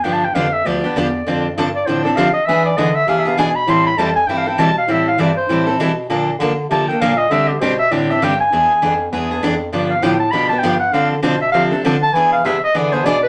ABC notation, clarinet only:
X:1
M:4/4
L:1/8
Q:"Swing" 1/4=198
K:Am
V:1 name="Clarinet"
(3g a g f e d4- | d2 z d c d f ^d | e d ^d e (3f e f ^g b | c' b a ^g (3=g f g a f |
e f d c3 z2 | z4 a g f ^d | e G c e d e g ^g- | ^g4 z4 |
d f g a b a g ^f | f A c e f z2 a | ^g f e ^d =d c d B |]